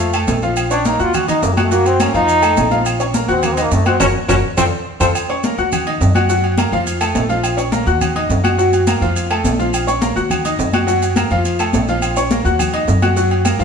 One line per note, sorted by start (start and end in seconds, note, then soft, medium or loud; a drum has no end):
0.00 0.25 F2 medium
0.00 0.25 A3 medium
0.13 0.37 A3 medium
0.13 0.38 A4 medium
0.13 0.38 A5 medium
0.13 high conga soft
0.13 low agogo loud
0.13 claves medium
0.13 maracas medium
0.27 0.94 A#1 loud
0.27 high conga medium
0.27 low timbale medium
0.27 low agogo medium
0.27 maracas medium
0.42 0.66 F3 medium
0.42 0.66 F4 loud
0.42 0.66 F5 medium
0.42 maracas soft
0.56 high conga soft
0.56 low agogo loud
0.56 claves medium
0.56 maracas medium
0.71 0.82 C#4 medium
0.71 0.88 D4 loud
0.71 0.83 C#5 medium
0.71 0.83 C#6 medium
0.71 high conga soft
0.71 low agogo medium
0.71 maracas medium
0.85 0.97 A#3 medium
0.85 1.02 D#4 medium
0.85 0.97 A#4 medium
0.85 0.97 A#5 medium
0.85 high conga loud
0.85 low timbale medium
0.85 maracas medium
0.99 1.39 D#2 medium
0.99 1.17 F4 loud
0.99 1.23 F#4 medium
0.99 1.23 F#5 medium
0.99 1.23 F#6 medium
0.99 high conga soft
0.99 maracas soft
1.14 1.28 F#4 loud
1.14 high conga soft
1.14 low conga medium
1.14 low agogo loud
1.14 claves medium
1.14 maracas medium
1.28 1.52 D#4 medium
1.28 1.45 D#4 medium
1.28 1.52 D#5 medium
1.28 1.52 D#6 medium
1.28 high conga soft
1.28 low conga medium
1.28 low agogo medium
1.28 maracas medium
1.42 2.09 F#2 medium
1.42 1.55 A#3 medium
1.42 high conga soft
1.42 low timbale medium
1.42 maracas medium
1.53 1.65 F#3 medium
1.53 1.69 F#4 medium
1.53 high conga medium
1.53 maracas soft
1.57 1.69 F#5 medium
1.57 1.69 F#6 medium
1.57 low agogo loud
1.57 claves medium
1.63 1.74 A3 medium
1.71 1.95 F#3 medium
1.71 1.88 A#3 medium
1.71 1.95 F#4 medium
1.71 1.95 F#5 medium
1.71 high conga soft
1.71 maracas medium
1.86 2.03 C4 medium
1.86 high conga soft
1.86 low agogo medium
1.86 maracas medium
2.00 2.12 A#3 medium
2.00 2.15 C#4 medium
2.00 2.12 A#4 medium
2.00 2.12 A#5 medium
2.00 high conga loud
2.00 low timbale medium
2.00 low agogo loud
2.00 claves medium
2.00 maracas medium
2.14 2.54 F2 medium
2.14 2.38 F3 loud
2.14 2.83 D#4 loud
2.14 2.38 F4 loud
2.14 2.38 F5 loud
2.14 high conga soft
2.14 maracas soft
2.28 high conga soft
2.28 low agogo medium
2.28 maracas medium
2.42 2.66 A3 medium
2.42 2.66 A4 medium
2.42 2.66 A5 medium
2.42 high conga soft
2.42 low agogo loud
2.42 claves medium
2.42 maracas medium
2.57 3.23 A#1 loud
2.57 high conga medium
2.57 low timbale medium
2.57 low agogo medium
2.57 maracas medium
2.71 2.95 F3 medium
2.71 2.95 F4 medium
2.71 2.95 F5 loud
2.71 high conga medium
2.71 maracas soft
2.85 low agogo loud
2.85 claves medium
2.85 maracas medium
3.00 3.12 C#4 medium
3.00 3.12 C#5 medium
3.00 3.12 C#6 medium
3.00 high conga soft
3.00 low agogo medium
3.00 maracas medium
3.14 3.26 A#3 medium
3.14 3.26 A#4 medium
3.14 3.26 A#5 medium
3.14 high conga loud
3.14 low timbale medium
3.14 maracas medium
3.28 3.68 D#2 loud
3.28 3.46 C4 medium
3.28 3.52 F#4 medium
3.28 3.52 F#5 medium
3.28 3.53 F#6 medium
3.28 high conga soft
3.28 maracas soft
3.43 3.55 A#3 medium
3.43 high conga soft
3.43 low conga medium
3.43 low agogo loud
3.43 claves medium
3.43 maracas medium
3.54 3.64 C4 loud
3.54 3.81 D#4 medium
3.54 3.81 D#5 medium
3.54 3.81 D#6 medium
3.54 high conga soft
3.54 low agogo medium
3.54 maracas medium
3.63 3.73 A#3 medium
3.71 3.98 F#2 loud
3.71 3.88 A3 medium
3.71 high conga soft
3.71 low timbale medium
3.71 maracas medium
3.86 3.99 C4 loud
3.86 3.98 F#4 medium
3.86 3.98 F#5 medium
3.86 3.98 F#6 medium
3.86 high conga medium
3.86 low agogo loud
3.86 claves medium
3.86 maracas soft
4.00 4.11 F#1 medium
4.00 4.07 C#4 loud
4.00 4.09 F#4 loud
4.00 4.09 A#4 loud
4.00 4.09 C#5 loud
4.00 low conga loud
4.00 high timbale loud
4.00 claves loud
4.00 maracas loud
4.28 4.40 F#1 medium
4.28 4.36 C#4 loud
4.28 4.38 F#4 loud
4.28 4.38 A#4 loud
4.28 4.38 C#5 loud
4.28 low conga loud
4.28 high timbale loud
4.28 claves loud
4.28 maracas loud
4.57 4.68 F2 loud
4.57 4.65 C4 loud
4.57 4.67 F4 loud
4.57 4.67 A4 loud
4.57 4.67 C5 loud
4.57 low conga loud
4.57 high timbale loud
4.57 claves medium
4.57 maracas loud
5.00 5.11 F2 medium
5.00 5.07 C4 loud
5.00 5.10 F4 loud
5.00 5.10 A4 loud
5.00 5.10 C5 loud
5.00 low conga medium
5.00 high timbale medium
5.00 claves loud
5.00 maracas loud
5.15 high conga soft
5.15 low agogo loud
5.15 claves medium
5.15 maracas medium
5.29 5.41 C#4 medium
5.29 5.41 C#5 medium
5.29 5.41 C#6 medium
5.29 high conga soft
5.29 low agogo medium
5.43 5.56 A#3 medium
5.43 5.56 A#4 medium
5.43 5.56 A#5 medium
5.43 high conga loud
5.43 low timbale medium
5.43 maracas medium
5.58 5.98 D#2 medium
5.58 5.82 F#4 medium
5.58 5.82 F#5 medium
5.58 5.82 F#6 medium
5.58 high conga soft
5.58 maracas soft
5.72 high conga soft
5.72 low conga medium
5.72 low agogo loud
5.72 claves medium
5.72 maracas medium
5.86 6.10 D#4 medium
5.86 6.10 D#5 medium
5.86 6.10 D#6 medium
5.86 high conga soft
5.86 low agogo medium
6.01 6.67 F#2 loud
6.01 high conga soft
6.01 low timbale medium
6.01 maracas medium
6.15 6.27 F#4 medium
6.15 6.27 F#5 medium
6.15 6.27 F#6 medium
6.15 high conga medium
6.15 low agogo loud
6.15 claves medium
6.15 maracas soft
6.29 6.53 F#3 medium
6.29 6.53 F#4 loud
6.29 6.53 F#5 medium
6.29 maracas medium
6.44 high conga soft
6.44 low agogo medium
6.58 6.70 A#3 medium
6.58 6.70 A#4 medium
6.58 6.70 A#5 medium
6.58 high conga loud
6.58 low timbale medium
6.58 low agogo loud
6.58 claves medium
6.58 maracas medium
6.72 7.12 F2 loud
6.72 6.96 F3 loud
6.72 6.96 F4 loud
6.72 6.96 F5 loud
6.72 high conga soft
6.72 maracas soft
6.86 high conga soft
6.86 low agogo medium
6.86 maracas medium
7.01 7.24 A3 medium
7.01 7.25 A4 medium
7.01 7.25 A5 medium
7.01 high conga soft
7.01 low agogo loud
7.01 claves medium
7.01 maracas medium
7.15 7.82 A#1 loud
7.15 high conga medium
7.15 low timbale medium
7.15 low agogo medium
7.15 maracas medium
7.29 7.53 F3 medium
7.29 7.53 F4 loud
7.29 7.53 F5 loud
7.29 maracas soft
7.44 high conga soft
7.44 low agogo loud
7.44 claves medium
7.44 maracas medium
7.57 7.69 C#4 medium
7.57 7.70 C#5 medium
7.57 7.70 C#6 medium
7.57 high conga soft
7.57 low agogo medium
7.57 maracas medium
7.72 7.84 A#3 medium
7.72 7.84 A#4 medium
7.72 7.84 A#5 medium
7.72 high conga loud
7.72 low timbale medium
7.72 maracas medium
7.86 8.27 D#2 loud
7.86 8.10 F#4 medium
7.86 8.11 F#5 medium
7.86 8.11 F#6 medium
7.86 high conga soft
7.86 maracas soft
8.01 high conga soft
8.01 low conga medium
8.01 low agogo loud
8.01 claves medium
8.01 maracas medium
8.15 8.39 D#4 medium
8.15 8.39 D#5 medium
8.15 8.40 D#6 medium
8.15 high conga soft
8.15 low agogo medium
8.29 8.96 F#2 loud
8.29 high conga soft
8.29 low timbale medium
8.29 maracas medium
8.44 8.56 F#4 medium
8.44 8.56 F#5 medium
8.44 8.56 F#6 medium
8.44 high conga medium
8.44 low agogo loud
8.44 claves medium
8.44 maracas soft
8.58 8.82 F#3 medium
8.58 8.82 F#4 medium
8.58 8.82 F#5 loud
8.58 high conga soft
8.58 maracas medium
8.73 high conga soft
8.73 low agogo medium
8.73 maracas medium
8.87 8.99 A#3 medium
8.87 8.99 A#4 medium
8.87 8.99 A#5 medium
8.87 high conga loud
8.87 low timbale medium
8.87 low agogo loud
8.87 claves medium
8.87 maracas medium
9.01 9.41 F2 loud
9.01 9.25 F3 loud
9.01 9.25 F4 loud
9.01 9.25 F5 loud
9.01 high conga soft
9.01 maracas soft
9.16 high conga soft
9.16 low agogo medium
9.16 maracas medium
9.30 9.54 A3 medium
9.30 9.54 A4 medium
9.30 9.54 A5 medium
9.30 high conga soft
9.30 low agogo loud
9.30 claves medium
9.44 10.11 A#1 loud
9.44 high conga medium
9.44 low timbale medium
9.44 low agogo medium
9.44 maracas medium
9.59 9.83 F3 medium
9.59 9.83 F4 medium
9.59 9.83 F5 medium
9.59 maracas soft
9.73 low agogo loud
9.73 claves medium
9.73 maracas medium
9.87 9.99 C#4 medium
9.87 9.99 C#5 medium
9.87 10.00 C#6 medium
9.87 high conga soft
9.87 low agogo medium
9.87 maracas medium
10.01 10.13 A#3 medium
10.01 10.13 A#4 medium
10.01 10.14 A#5 medium
10.01 high conga loud
10.01 low timbale medium
10.01 maracas medium
10.16 10.56 D#2 loud
10.16 10.40 F#4 medium
10.16 10.40 F#5 medium
10.16 10.40 F#6 medium
10.16 high conga soft
10.16 maracas soft
10.30 high conga soft
10.30 low conga medium
10.30 low agogo loud
10.30 claves medium
10.30 maracas medium
10.45 10.69 D#4 medium
10.45 10.68 D#5 medium
10.45 10.69 D#6 medium
10.45 high conga soft
10.45 low agogo medium
10.45 maracas medium
10.59 11.25 F#2 loud
10.59 high conga soft
10.59 low timbale medium
10.59 maracas medium
10.73 10.85 F#4 medium
10.73 10.86 F#5 medium
10.73 10.86 F#6 medium
10.73 high conga medium
10.73 low agogo loud
10.73 claves medium
10.73 maracas soft
10.87 11.11 F#3 medium
10.87 11.11 F#4 medium
10.87 11.11 F#5 medium
10.87 maracas medium
11.02 high conga soft
11.02 low agogo medium
11.02 maracas medium
11.16 11.28 A#3 medium
11.16 11.28 A#4 medium
11.16 11.28 A#5 medium
11.16 high conga loud
11.16 low timbale medium
11.16 low agogo loud
11.16 claves medium
11.16 maracas medium
11.30 11.71 F2 medium
11.30 11.54 F3 loud
11.30 11.55 F4 loud
11.30 11.55 F5 loud
11.30 high conga soft
11.30 maracas soft
11.45 high conga soft
11.45 low agogo medium
11.45 maracas medium
11.59 11.83 A3 medium
11.59 11.83 A4 medium
11.59 11.83 A5 medium
11.59 high conga soft
11.59 low agogo loud
11.59 claves medium
11.59 maracas medium
11.73 12.40 A#1 loud
11.73 high conga medium
11.73 low timbale medium
11.73 low agogo medium
11.73 maracas medium
11.88 12.12 F3 loud
11.88 12.12 F4 loud
11.88 12.12 F5 loud
11.88 maracas soft
12.02 high conga soft
12.02 low agogo loud
12.02 claves medium
12.02 maracas medium
12.16 12.29 C#4 medium
12.16 12.29 C#5 medium
12.16 12.29 C#6 medium
12.16 high conga soft
12.16 low agogo medium
12.16 maracas medium
12.31 12.43 A#3 medium
12.31 12.43 A#4 medium
12.31 12.43 A#5 medium
12.31 high conga loud
12.31 low timbale medium
12.31 maracas medium
12.45 12.85 D#2 medium
12.45 12.68 F#4 medium
12.45 12.69 F#5 medium
12.45 12.69 F#6 medium
12.45 high conga soft
12.45 maracas soft
12.59 high conga soft
12.59 low conga medium
12.59 low agogo loud
12.59 claves medium
12.59 maracas medium
12.73 12.97 D#4 medium
12.73 12.97 D#5 medium
12.73 12.97 D#6 medium
12.73 high conga soft
12.73 low agogo medium
12.88 13.54 F#2 loud
12.88 high conga soft
12.88 low timbale medium
12.88 maracas medium
13.02 13.14 F#4 medium
13.02 13.14 F#5 medium
13.02 13.14 F#6 medium
13.02 high conga medium
13.02 low agogo loud
13.02 claves medium
13.02 maracas soft
13.16 13.40 F#3 medium
13.16 13.40 F#4 medium
13.16 13.40 F#5 medium
13.16 high conga soft
13.16 maracas medium
13.31 high conga soft
13.31 low agogo medium
13.45 13.57 A#3 medium
13.45 13.58 A#4 medium
13.45 13.58 A#5 medium
13.45 high conga loud
13.45 low timbale medium
13.45 low agogo loud
13.45 claves medium
13.45 maracas medium
13.59 13.64 F2 medium
13.59 13.64 F3 loud
13.59 13.64 F4 medium
13.59 13.64 F5 loud
13.59 high conga soft
13.59 maracas soft